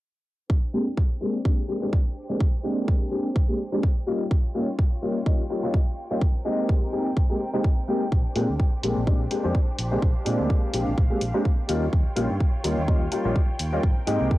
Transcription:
0.50 violin section D4 G4 C5 G5, kick
0.73 grand piano G#3 A#3 C4 D4 G4
0.97 kick
1.21 grand piano G#3 A#3 C4 D4 G4
1.45 grand piano G#3 A#3 D4 G4, kick
1.68 grand piano G#3 A#3 C4 D4 G4
1.81 grand piano G#3 A#3 C4 D4 G4
1.93 kick
2.29 grand piano G#3 A#3 C4 D4 G4
2.40 kick
2.63 grand piano G#3 A#3 C4 D4 G4
2.88 kick
3.11 grand piano G#3 A#3 C4 D4 G4
3.36 kick
3.48 grand piano G#3 A#3 C4 D4 G4
3.72 grand piano G#3 A#3 C4 D4 G4
3.83 kick
4.07 grand piano G3 A#3 C#4 D#4 F4, violin section F4 C#5 G5
4.31 kick
4.54 grand piano G3 A#3 C#4 D#4 F4
4.79 kick
5.02 grand piano G3 A#3 C#4 D#4 F4
5.26 grand piano G3 A#3 C#4 D#4 F4, kick
5.50 grand piano G3 A#3 C#4 D#4 F4
5.63 grand piano G3 A#3 C#4 D#4 F4
5.74 kick
6.11 grand piano G3 A#3 C#4 D#4 F4
6.21 violin section C4 A#4, kick
6.45 grand piano G#3 A#3 C4 D#4 G4
6.69 kick
6.92 grand piano G#3 A#3 C4 D#4 G4
7.17 kick
7.29 grand piano G#3 A#3 C4 D#4 G4
7.53 grand piano G#3 A#3 C4 D#4 G4
7.64 kick
7.88 grand piano G#3 A#3 C4 D#4 G4
8.12 fingered electric bass A#1, violin section D4 G4 C5, kick
8.35 fingered electric bass A#2, grand piano G#3 A#3 C4 D4 G4, open hi-hat
8.49 fingered electric bass D2
8.60 kick
8.83 fingered electric bass A#1, grand piano G#3 A#3 C4 D4 G4, open hi-hat
8.97 fingered electric bass A#1
9.06 grand piano G#3 A#3 C4 D4 G4, kick
9.30 grand piano G#3 A#3 C4 D4 G4, open hi-hat
9.44 fingered electric bass F2, grand piano G#3 A#3 C4 D4 G4
9.55 kick
9.79 fingered electric bass A#1, open hi-hat
9.91 grand piano G#3 A#3 C4 D4 G4
10.02 fingered electric bass A#1, violin section F5, kick
10.25 fingered electric bass A#2, grand piano G#3 A#3 C4 D4 G4, open hi-hat
10.39 fingered electric bass D2
10.50 kick
10.73 fingered electric bass A#1, grand piano G#3 A#3 C4 D4 G4, open hi-hat
10.87 fingered electric bass A#1
10.98 fingered electric bass A#1, kick
11.10 grand piano G#3 A#3 C4 D4 G4
11.21 fingered electric bass A#1, open hi-hat
11.34 grand piano G#3 A#3 C4 D4 G4
11.45 kick
11.68 fingered electric bass D#2, grand piano G3 A#3 C#4 D#4 F4, violin section F4 C#5 G5, open hi-hat
11.93 fingered electric bass D#2, kick
12.16 fingered electric bass A#1, grand piano G3 A#3 C#4 D#4 F4, open hi-hat
12.30 fingered electric bass G2
12.40 kick
12.64 fingered electric bass D#2, grand piano G3 A#3 C#4 D#4 F4, open hi-hat
12.78 fingered electric bass D#2
12.88 grand piano G3 A#3 C#4 D#4 F4, kick
13.12 grand piano G3 A#3 C#4 D#4 F4, open hi-hat
13.25 fingered electric bass A#1, grand piano G3 A#3 C#4 D#4 F4
13.36 kick
13.59 fingered electric bass D#2, open hi-hat
13.72 grand piano G3 A#3 C#4 D#4 F4
13.83 fingered electric bass G#1, violin section C4 A#4, kick
14.07 fingered electric bass G#2, grand piano G#3 A#3 C4 D#4 G4, open hi-hat
14.20 fingered electric bass C2
14.31 kick

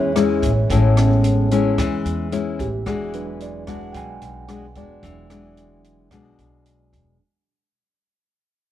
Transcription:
Already playing: upright bass E2, nylon-string guitar E3 G#3 C#4 E4, tine electric piano G#3 B3 C#4 E4 G#4 C#5
0.16 nylon-string guitar G#3 C#4 E4, cross-stick, closed hi-hat
0.42 upright bass A1, kick, closed hi-hat
0.70 upright bass A1, nylon-string guitar A2 G#3 C#4 E4, kick, closed hi-hat
0.97 tine electric piano G#3 B3 C#4, cross-stick, closed hi-hat
1.24 closed hi-hat
1.51 nylon-string guitar G#3 C#4 E4, closed hi-hat
1.78 upright bass E2, nylon-string guitar E3, kick, cross-stick, closed hi-hat
2.05 upright bass E2, closed hi-hat
2.32 nylon-string guitar G#3 C#4 E4, closed hi-hat
2.59 upright bass A1, tine electric piano G4, kick, closed hi-hat
2.86 upright bass E1, nylon-string guitar E3 G#3 D4 F#4, tine electric piano G#4, kick, cross-stick, closed hi-hat
3.14 tine electric piano F#3 G#3 D4 B4, closed hi-hat
3.40 tine electric piano D5, closed hi-hat
3.67 nylon-string guitar G#3 D4 F#4, tine electric piano F#5, kick, cross-stick, closed hi-hat
3.92 upright bass B1, nylon-string guitar B2, tine electric piano G5, kick, closed hi-hat
3.97 tine electric piano G#5
4.22 upright bass B1, closed hi-hat
4.48 nylon-string guitar G#3 D4 F#4, cross-stick, closed hi-hat
4.75 upright bass E1, nylon-string guitar G#3 D4 F#4, tine electric piano D5, kick, closed hi-hat
5.03 upright bass E1, nylon-string guitar E3, tine electric piano F#3 G#3 D4, kick, closed hi-hat
5.30 nylon-string guitar G#3 D4 F#4, cross-stick, closed hi-hat
5.57 closed hi-hat
5.84 closed hi-hat
6.11 upright bass B1, nylon-string guitar B2 G#3 D4 F#4, kick, cross-stick, closed hi-hat
6.39 upright bass B1, closed hi-hat
6.66 closed hi-hat
6.93 upright bass E1, kick, closed hi-hat

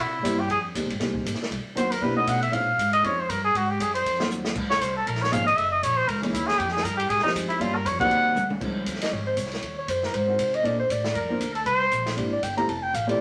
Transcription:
0.00 upright bass C3, trumpet E4
0.22 upright bass G2, grand piano G3 A#3 C4 E4 G4, kick, hi-hat pedal, ride
0.40 trumpet G4
0.49 upright bass F2, trumpet G#4, kick, ride
0.74 upright bass D#2, grand piano G#3 A#3 C4 D#4 G4, kick, hi-hat pedal, ride
0.83 upright bass C2
0.90 upright bass G#1, ride
1.00 upright bass C2, grand piano G#3 A#3 C4 D#4 G4, kick, snare, ride
1.15 kick
1.26 upright bass G#1, kick, hi-hat pedal, ride
1.34 snare
1.42 snare
1.51 upright bass C2, kick, ride
1.65 muted upright bass stroke
1.75 upright bass D#2, grand piano F#3 A#3 C4 D#4 F#4, trumpet C5, kick, hi-hat pedal, ride
1.91 trumpet A#4, ride
2.01 upright bass B1, grand piano A#3 C4 D4 E4 G4, trumpet B4, kick
2.16 grand piano A3 B3 C#4 D#4 F#4, trumpet D#5
2.27 upright bass B2, trumpet F#5, kick, hi-hat pedal, ride
2.42 trumpet E5, ride
2.51 upright bass A#2, grand piano G#3 C4 C#4 D#4 F4, trumpet F5, kick, ride
2.78 upright bass G#2, kick, hi-hat pedal, ride
2.93 trumpet D#5, ride
3.03 upright bass F2, grand piano G#3 C4 C#4 D#4 F4, trumpet C#5, kick, ride
3.20 trumpet C5
3.29 upright bass G2, trumpet A#4, kick, hi-hat pedal, ride
3.45 trumpet G#4
3.54 upright bass G#2, trumpet F#4, kick, ride
3.71 trumpet G4
3.80 upright bass F#2, trumpet G#4, kick, hi-hat pedal, ride
3.95 trumpet C5, ride
4.05 upright bass F2, kick, ride
4.19 grand piano F#3 A#3 C4 D#4 F4, snare
4.29 upright bass D#2, hi-hat pedal
4.45 snare
4.55 upright bass C#2, kick, crash
4.70 trumpet C#5, snare
4.81 upright bass C2, trumpet C5, kick, hi-hat pedal, ride
4.96 trumpet A4
5.06 upright bass A#1, trumpet A#4, kick, ride
5.15 snare
5.22 trumpet C#5, snare
5.31 upright bass G#1, grand piano F3 A#3 C#4 D#4 G#4, trumpet F5, kick, hi-hat pedal, ride
5.46 trumpet D#5, ride
5.57 upright bass F#1, trumpet E5, kick, ride
5.71 trumpet D#5
5.82 upright bass A#1, trumpet C#5, kick, hi-hat pedal, ride
5.97 trumpet C5
6.08 upright bass C#2, trumpet A#4, kick, ride
6.22 grand piano E3 A#3 C#4 D#4 G#4, trumpet C#4, ride
6.32 upright bass D#2, trumpet E4, kick, hi-hat pedal, ride
6.47 trumpet G#4, snare
6.58 upright bass F2, trumpet G4, kick, ride
6.68 trumpet G#4, snare
6.77 snare
6.83 upright bass G2, trumpet A#4, kick, hi-hat pedal, ride
6.97 trumpet G4, ride
7.09 upright bass G#2, trumpet G#4, kick, ride
7.19 snare
7.23 grand piano F3 G#3 C4 D#4 G4, trumpet D#4, muted upright bass stroke, snare
7.35 upright bass F2, kick, hi-hat pedal, ride
7.48 trumpet E4, muted upright bass stroke, ride
7.59 upright bass G2, grand piano G3 A#3 C#4 F4 G4, trumpet F4, kick, ride
7.75 trumpet A#4
7.85 upright bass F2, trumpet C#5, kick, hi-hat pedal, ride
7.99 grand piano G3 A#3 C4 D#4 F#4, trumpet F#5, kick, ride
8.10 upright bass D#2, kick, ride
8.35 upright bass D2, hi-hat pedal, high tom
8.50 high tom
8.60 upright bass C#2, grand piano F3 C4 C#4 D#4 G#4, kick, crash
8.86 upright bass D#2, kick, hi-hat pedal, ride
8.95 snare
9.01 soprano saxophone D#5, snare, ride
9.12 upright bass G#1, soprano saxophone C#5, kick
9.27 soprano saxophone C5
9.37 upright bass C2, soprano saxophone C#5, kick, hi-hat pedal, ride
9.46 snare
9.52 snare, ride
9.62 upright bass D#2, kick, ride
9.79 soprano saxophone C#5
9.88 upright bass F#2, soprano saxophone C5, kick, hi-hat pedal, ride
10.03 soprano saxophone A#4, snare
10.13 upright bass G#2, soprano saxophone C5, kick, ride
10.27 grand piano G#3 C4 D#4 F#4 A#4
10.38 upright bass C3, kick, hi-hat pedal, ride
10.54 soprano saxophone D#5, ride
10.63 upright bass A#2, grand piano A#3 C4 D4 F4 A4, soprano saxophone D5, kick, ride
10.79 soprano saxophone C5
10.89 upright bass A2, soprano saxophone D5, kick, hi-hat pedal, ride
11.04 snare
11.15 upright bass F2, trumpet A#4, kick, ride
11.29 grand piano A#3 C4 D4 F4 C5
11.40 upright bass D2, kick, hi-hat pedal, ride
11.55 trumpet A4, ride
11.66 upright bass C2, trumpet C5, kick, ride
11.91 upright bass A#1, kick, hi-hat pedal, ride
12.06 snare, ride
12.16 upright bass G#1, grand piano A#3 C4 D4 E4 G4, kick, ride
12.33 soprano saxophone D5
12.42 upright bass G1, soprano saxophone G5, kick, hi-hat pedal, ride
12.57 grand piano A3 C4 E4 F4 G4, soprano saxophone A#5, ride
12.68 upright bass F1, soprano saxophone A5, kick, ride
12.82 soprano saxophone G5
12.94 upright bass A1, soprano saxophone F5, kick, hi-hat pedal, ride
13.07 grand piano A3 C4 E4 F4 G4, soprano saxophone D5, ride

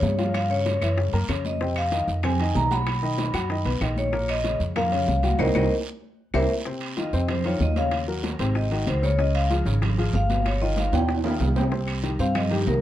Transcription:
Already playing: grand piano C#3 C#4 C#5, vibraphone C#5
0.02 upright bass G2, high bongo, low bongo, high conga, low timbale, short guiro
0.18 grand piano F3 F4 F5, high bongo, high conga, high timbale, short guiro
0.34 vibraphone F5, high bongo, high conga, high timbale, long guiro, claves
0.50 grand piano C#3 C#4 C#5, vibraphone C#5, high conga
0.66 high bongo, high conga, high timbale, short guiro
0.81 upright bass F#2, grand piano E3 E4 E5, high bongo, high conga, high timbale, short guiro, claves
0.97 grand piano C#3 C#4 C#5, high bongo, high conga, long guiro
1.13 upright bass F#2, grand piano A#3 A#4 A#5, high bongo, high conga, high timbale
1.28 upright bass F2, grand piano C#3 C#4 C#5, high bongo, low bongo, high conga, high timbale, short guiro, claves
1.45 vibraphone D#5, high bongo, high conga, short guiro
1.61 grand piano C3 C4 C5, high bongo, high conga, long guiro
1.76 vibraphone F5, high conga, high timbale, claves
1.92 grand piano D#3 D#4 D#5, high bongo, high conga, high timbale, short guiro
2.08 upright bass F2, high bongo, high conga, short guiro
2.23 grand piano C3 C4 C5, vibraphone G#5, high bongo, high conga, low conga, high timbale, long guiro, claves
2.39 grand piano D#3 D#4 D#5, high bongo, high conga, high timbale
2.55 upright bass B1, vibraphone A#5, high bongo, low bongo, high conga, low timbale, short guiro
2.71 grand piano F#3 F#4 F#5, vibraphone B5, high bongo, high conga, high timbale, short guiro
2.87 high bongo, high conga, high timbale, long guiro, claves
3.02 grand piano D#3 D#4 D#5, high conga
3.18 high bongo, high conga, high timbale, short guiro
3.34 upright bass F#2, grand piano F#3 F#4 F#5, high bongo, high conga, high timbale, short guiro, claves
3.50 grand piano D#3 D#4 D#5, high bongo, high conga, long guiro
3.65 upright bass B1, grand piano B3 B4 B5, high bongo, high conga, high timbale
3.81 upright bass A#1, grand piano D#3 D#4 D#5, high bongo, low bongo, high timbale, short guiro, claves
3.96 vibraphone C#5, high bongo, high conga, short guiro
4.12 grand piano A#2 A#3 A#4, high bongo, high conga, long guiro
4.28 vibraphone D#5, high conga, high timbale, claves
4.44 grand piano C#3 C#4 C#5, high bongo, high conga, high timbale, short guiro
4.60 upright bass F2, high bongo, high conga, short guiro
4.76 grand piano A#2 A#3 A#4, vibraphone F5, high bongo, high conga, low conga, high timbale, long guiro, claves
4.92 grand piano C#3 C#4 C#5, high bongo, high conga, low conga, high timbale
5.07 upright bass C2, high bongo, low bongo, high conga, short guiro
5.23 grand piano F#3 F#4 F#5, high bongo, high conga, high timbale, short guiro
5.39 upright bass C2, grand piano C4 D#4 F#4, vibraphone A#4 C5 D#5, high bongo, high conga, high timbale, long guiro, claves
5.54 upright bass C2, grand piano C4 D#4 F#4, vibraphone A#4 C5 D#5, high bongo, high conga, high timbale, long guiro, claves
6.34 upright bass C2, grand piano C4 E4 G4, vibraphone A#4 C5 E5, high bongo, high conga, high timbale, long guiro, claves
6.65 grand piano C3 C4 C5, high bongo, long guiro
6.81 high conga, high timbale
6.97 grand piano D#3 D#4 F4, vibraphone D#5, high bongo, high conga, high timbale, short guiro
7.13 upright bass F2, grand piano C3 C4 C5, high bongo, high conga, short guiro
7.28 vibraphone C5, high bongo, high conga, low conga, high timbale, long guiro
7.44 grand piano D#3 D#4 F4, vibraphone C#5, high bongo, high conga, low conga, high timbale
7.60 upright bass D#2, vibraphone D#5, high bongo, low bongo, high conga, short guiro
7.76 grand piano C#3 C#4 C#5, vibraphone F5, high bongo, high conga, high timbale, short guiro
7.91 high bongo, high conga, high timbale, long guiro
8.08 grand piano F#3 F#4 A#4
8.23 high bongo, high conga, high timbale, short guiro
8.39 upright bass G#1, grand piano C3 C4 C5, high bongo, high conga, high timbale, short guiro
8.55 vibraphone D#5, high bongo, high conga, long guiro
8.71 grand piano D#3 D#4 F#4, high bongo, high conga, high timbale
8.87 upright bass C#2, vibraphone C5, high bongo, low bongo, high timbale, short guiro
9.02 grand piano C#3 C#4 C#5, vibraphone C#5, high bongo, high conga, short guiro
9.18 grand piano C#3 C#4 C#5, vibraphone D#5, high bongo, high conga, long guiro
9.35 vibraphone F5, high conga, high timbale
9.50 grand piano F3 F4 G#4, high bongo, high conga, high timbale, short guiro
9.65 upright bass G#1, grand piano C#3 C#4 C#5, high bongo, high conga, short guiro
9.82 high bongo, high conga, low conga, high timbale, long guiro
9.98 grand piano F3 F4 G#4, high bongo, high conga, high timbale
10.13 upright bass G1, vibraphone F5, high bongo, low bongo, high conga, short guiro
10.29 grand piano B2 B3 B4, high bongo, high conga, high timbale, short guiro
10.46 vibraphone C#5, high bongo, high conga, high timbale, long guiro
10.61 grand piano D#3 D#4 F4, vibraphone D#5, high conga
10.76 vibraphone F5, high bongo, high conga, high timbale, short guiro
10.92 upright bass D#2, grand piano B2 B3 B4, vibraphone G5, high bongo, high conga, high timbale, short guiro
11.09 high bongo, high conga, high timbale, long guiro
11.24 grand piano D#3 D#4 F4, high bongo, high conga, low timbale
11.40 upright bass C2, high bongo, low bongo, low timbale, short guiro
11.56 grand piano C3 C4 C5, high bongo, high conga, low timbale, short guiro
11.71 grand piano C3 C4 C5, high bongo, high conga, long guiro
11.87 high conga, high timbale, claves
12.03 grand piano D#3 D#4 G4, high bongo, high conga, high timbale, short guiro
12.19 upright bass G2, grand piano C3 C4 C5, vibraphone F5, high bongo, high conga, short guiro
12.35 vibraphone D#5, high bongo, high conga, low conga, high timbale, long guiro, claves
12.50 grand piano D#3 D#4 G4, vibraphone G4, high bongo, high conga, low conga, high timbale
12.66 upright bass C2, vibraphone A#4, high bongo, low bongo, high conga, low timbale, short guiro

